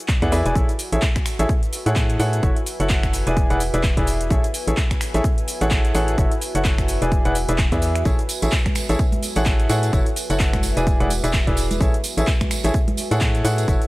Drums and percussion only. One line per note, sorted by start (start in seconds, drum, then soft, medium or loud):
0.08 kick loud
0.08 clap loud
0.08 shaker soft
0.22 kick medium
0.22 closed hi-hat soft
0.22 shaker soft
0.32 open hi-hat medium
0.32 shaker medium
0.46 closed hi-hat medium
0.46 shaker soft
0.56 kick loud
0.56 shaker soft
0.69 closed hi-hat medium
0.69 shaker soft
0.79 open hi-hat loud
0.79 shaker medium
0.92 closed hi-hat medium
0.92 shaker soft
1.02 kick loud
1.02 clap loud
1.02 shaker soft
1.16 finger snap medium
1.16 kick medium
1.16 closed hi-hat soft
1.16 shaker soft
1.26 finger snap medium
1.26 open hi-hat medium
1.26 shaker medium
1.39 closed hi-hat medium
1.39 shaker soft
1.49 kick loud
1.49 shaker soft
1.63 closed hi-hat soft
1.63 shaker soft
1.73 open hi-hat loud
1.73 shaker medium
1.86 closed hi-hat medium
1.86 shaker soft
1.96 kick loud
1.96 clap loud
1.96 shaker soft
2.10 closed hi-hat soft
2.10 shaker soft
2.20 open hi-hat medium
2.20 shaker medium
2.33 closed hi-hat medium
2.33 shaker soft
2.43 kick loud
2.43 shaker soft
2.56 closed hi-hat medium
2.56 shaker soft
2.66 open hi-hat loud
2.66 shaker medium
2.80 closed hi-hat medium
2.80 shaker soft
2.89 kick loud
2.89 clap loud
2.89 shaker soft
3.03 finger snap medium
3.03 kick medium
3.03 closed hi-hat soft
3.03 shaker soft
3.13 open hi-hat medium
3.13 shaker medium
3.27 closed hi-hat medium
3.27 shaker soft
3.37 kick loud
3.37 shaker soft
3.50 closed hi-hat soft
3.50 shaker soft
3.60 open hi-hat loud
3.60 shaker medium
3.74 closed hi-hat medium
3.74 shaker soft
3.83 kick loud
3.83 clap loud
3.83 shaker soft
3.97 kick medium
3.97 closed hi-hat soft
3.97 shaker soft
4.07 open hi-hat medium
4.07 shaker medium
4.21 closed hi-hat medium
4.21 shaker soft
4.30 kick loud
4.30 shaker soft
4.44 closed hi-hat medium
4.44 shaker soft
4.54 open hi-hat loud
4.54 shaker medium
4.68 closed hi-hat medium
4.68 shaker soft
4.77 kick loud
4.77 clap loud
4.77 shaker soft
4.91 finger snap medium
4.91 kick medium
4.91 closed hi-hat soft
4.91 shaker soft
5.01 finger snap medium
5.01 open hi-hat medium
5.01 shaker medium
5.14 closed hi-hat medium
5.14 shaker soft
5.24 kick loud
5.24 shaker soft
5.38 closed hi-hat soft
5.38 shaker soft
5.48 open hi-hat loud
5.48 shaker medium
5.61 closed hi-hat medium
5.61 shaker soft
5.71 kick loud
5.71 clap loud
5.71 shaker soft
5.85 closed hi-hat medium
5.85 shaker soft
5.95 open hi-hat medium
5.95 shaker medium
6.08 closed hi-hat medium
6.08 shaker soft
6.18 kick loud
6.18 shaker soft
6.32 closed hi-hat medium
6.32 shaker soft
6.41 open hi-hat loud
6.41 shaker medium
6.55 closed hi-hat medium
6.55 shaker soft
6.64 kick loud
6.64 clap loud
6.64 shaker soft
6.78 finger snap medium
6.78 kick medium
6.78 closed hi-hat soft
6.78 shaker soft
6.88 open hi-hat medium
6.88 shaker medium
7.02 closed hi-hat medium
7.02 shaker soft
7.12 kick loud
7.12 shaker soft
7.25 closed hi-hat soft
7.25 shaker soft
7.35 open hi-hat loud
7.35 shaker medium
7.49 closed hi-hat medium
7.49 shaker soft
7.58 kick loud
7.58 clap loud
7.58 shaker soft
7.72 kick medium
7.72 closed hi-hat medium
7.72 shaker soft
7.82 open hi-hat medium
7.82 shaker medium
7.96 finger snap medium
7.96 closed hi-hat medium
7.96 shaker soft
8.05 kick loud
8.05 tambourine soft
8.05 shaker soft
8.19 closed hi-hat medium
8.19 shaker soft
8.29 open hi-hat loud
8.29 tambourine medium
8.29 shaker medium
8.42 closed hi-hat medium
8.42 tambourine medium
8.42 shaker soft
8.52 kick loud
8.52 clap loud
8.52 tambourine soft
8.52 shaker soft
8.66 finger snap medium
8.66 kick medium
8.66 closed hi-hat soft
8.66 high conga medium
8.66 shaker soft
8.75 finger snap medium
8.75 open hi-hat medium
8.75 tambourine medium
8.75 shaker medium
8.89 closed hi-hat medium
8.89 tambourine medium
8.89 shaker soft
8.99 kick loud
8.99 tambourine soft
8.99 shaker soft
9.12 closed hi-hat soft
9.12 high conga loud
9.12 shaker soft
9.23 open hi-hat loud
9.23 tambourine medium
9.23 shaker medium
9.36 closed hi-hat medium
9.36 tambourine medium
9.36 shaker soft
9.46 kick loud
9.46 clap loud
9.46 tambourine soft
9.46 shaker soft
9.60 closed hi-hat medium
9.60 shaker soft
9.69 open hi-hat medium
9.69 tambourine loud
9.69 shaker medium
9.83 closed hi-hat medium
9.83 tambourine soft
9.83 shaker soft
9.93 kick loud
9.93 tambourine soft
9.93 shaker soft
10.06 closed hi-hat medium
10.06 shaker soft
10.16 open hi-hat loud
10.16 tambourine medium
10.16 shaker medium
10.30 closed hi-hat medium
10.30 tambourine medium
10.30 shaker soft
10.39 kick loud
10.39 clap loud
10.39 tambourine soft
10.39 shaker soft
10.53 finger snap medium
10.53 kick medium
10.53 closed hi-hat soft
10.53 high conga medium
10.53 shaker soft
10.63 open hi-hat medium
10.63 tambourine loud
10.63 shaker medium
10.77 closed hi-hat medium
10.77 tambourine medium
10.77 shaker soft
10.87 kick loud
10.87 tambourine soft
10.87 shaker soft
11.00 closed hi-hat soft
11.00 high conga medium
11.00 shaker soft
11.10 open hi-hat loud
11.10 tambourine medium
11.10 shaker medium
11.24 closed hi-hat medium
11.24 tambourine medium
11.24 shaker soft
11.33 kick loud
11.33 clap loud
11.33 tambourine soft
11.33 shaker soft
11.47 kick medium
11.47 closed hi-hat medium
11.47 shaker soft
11.57 open hi-hat medium
11.57 tambourine medium
11.57 shaker medium
11.71 closed hi-hat medium
11.71 tambourine medium
11.71 high conga medium
11.71 shaker soft
11.81 kick loud
11.81 tambourine soft
11.81 shaker soft
11.94 closed hi-hat medium
11.94 shaker soft
12.04 open hi-hat loud
12.04 tambourine loud
12.04 shaker medium
12.17 closed hi-hat medium
12.17 tambourine medium
12.17 shaker soft
12.27 kick loud
12.27 clap loud
12.27 tambourine soft
12.27 shaker soft
12.41 finger snap medium
12.41 kick medium
12.41 closed hi-hat soft
12.41 high conga medium
12.41 shaker soft
12.51 finger snap medium
12.51 open hi-hat medium
12.51 tambourine loud
12.51 shaker medium
12.64 closed hi-hat medium
12.64 tambourine medium
12.64 shaker soft
12.74 kick loud
12.74 tambourine soft
12.74 shaker soft
12.88 closed hi-hat soft
12.88 high conga medium
12.88 shaker soft
12.97 open hi-hat loud
12.97 tambourine medium
12.97 shaker medium
13.11 closed hi-hat medium
13.11 tambourine medium
13.11 shaker soft
13.21 kick loud
13.21 clap loud
13.21 tambourine soft
13.21 shaker soft
13.35 closed hi-hat soft
13.35 shaker soft
13.45 open hi-hat medium
13.45 tambourine loud
13.45 shaker medium
13.58 closed hi-hat medium
13.58 tambourine medium
13.58 shaker soft
13.68 kick loud
13.68 tambourine soft
13.68 shaker soft
13.82 closed hi-hat medium
13.82 shaker soft